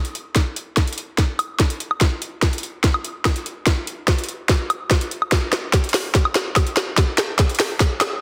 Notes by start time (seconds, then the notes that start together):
0.05 closed hi-hat
0.15 closed hi-hat
0.36 kick, snare, closed hi-hat
0.56 closed hi-hat
0.77 kick, snare, closed hi-hat
0.87 closed hi-hat
0.93 closed hi-hat
0.98 closed hi-hat
1.18 kick, snare, closed hi-hat
1.39 closed hi-hat, high woodblock
1.60 kick, snare, closed hi-hat
1.70 closed hi-hat
1.80 closed hi-hat
1.91 high woodblock
2.01 kick, snare, closed hi-hat
2.22 closed hi-hat
2.42 kick, snare, closed hi-hat
2.53 closed hi-hat
2.58 closed hi-hat
2.63 closed hi-hat
2.84 kick, snare, closed hi-hat
2.94 high woodblock
3.04 closed hi-hat
3.25 kick, snare, closed hi-hat, high woodblock
3.36 closed hi-hat
3.46 closed hi-hat
3.67 kick, snare, closed hi-hat
3.87 closed hi-hat
4.08 kick, snare, closed hi-hat
4.18 closed hi-hat
4.24 closed hi-hat
4.29 closed hi-hat
4.49 kick, snare, closed hi-hat
4.70 closed hi-hat, high woodblock
4.91 kick, snare, closed hi-hat
5.01 closed hi-hat
5.11 closed hi-hat
5.22 high woodblock
5.32 kick, snare, closed hi-hat
5.53 snare, closed hi-hat
5.73 kick, snare, closed hi-hat
5.84 closed hi-hat
5.89 closed hi-hat
5.94 snare, open hi-hat
6.15 kick, snare, closed hi-hat
6.25 high woodblock
6.35 snare, closed hi-hat
6.56 kick, snare, closed hi-hat, high woodblock
6.67 closed hi-hat
6.77 snare, closed hi-hat
6.97 kick, snare, closed hi-hat
7.18 snare, closed hi-hat
7.39 kick, snare, closed hi-hat
7.49 closed hi-hat
7.55 closed hi-hat
7.60 snare, open hi-hat
7.80 kick, snare, closed hi-hat
8.01 snare, closed hi-hat, high woodblock